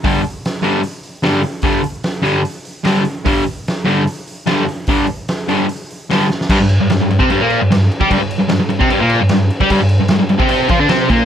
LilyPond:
<<
  \new Staff \with { instrumentName = "Distorted electric guitar" } { \clef bass \time 4/4 \key c \lydian \tempo 4 = 149 <g, d g>8 r4 <g, d g>8 r4 <g, d g>8 r8 | <g, d g>8 r4 <g, d g>8 r4 <g, d g>8 r8 | <g, d g>8 r4 <g, d g>8 r4 <g, d g>8 r8 | <g, d g>8 r4 <g, d g>8 r4 <g, d g>8 r8 |
<g, g>16 g,8 g,16 g,16 g,16 g,16 <c c'>16 <g, g>16 <bes, bes>8 g,16 g,8 r16 <g g'>16 | <g, g>16 g,8 g,16 g,16 g,16 g,16 <c c'>16 <g, g>16 <bes, bes>8 g,16 g,8 r16 <g g'>16 | <g, g>16 g,8 g,16 g,16 g,16 g,16 <c c'>16 <c c'>8 <f f'>16 <d d'>16 <c c'>8 <bes, bes>8 | }
  \new DrumStaff \with { instrumentName = "Drums" } \drummode { \time 4/4 <hho bd>8 hho8 <hho sn>8 hho8 hho8 hho8 <hho sn>8 hho8 | <hho bd>8 hho8 <hho sn>8 hho8 hho8 hho8 <hho sn>8 hho8 | <hho bd>8 hho8 <hho sn>8 hho8 hho8 hho8 <hho sn>8 hho8 | <hho bd>8 hho8 <hho sn>8 hho8 hho8 hho8 <hho sn>16 sn16 sn16 sn16 |
<cymc bd>8 cymc8 <cymc sn>8 cymc16 bd16 cymc8 cymc8 <cymc sn>16 sn16 cymc16 bd16 | <cymc bd>8 cymc8 <cymc sn>8 cymc16 bd16 cymc8 cymc8 <cymc sn>8 cymc16 bd16 | <cymc bd>8 cymc8 <cymc sn>8 cymc16 bd16 cymc8 <cymc bd>8 <cymc sn>8 <cymc bd>8 | }
>>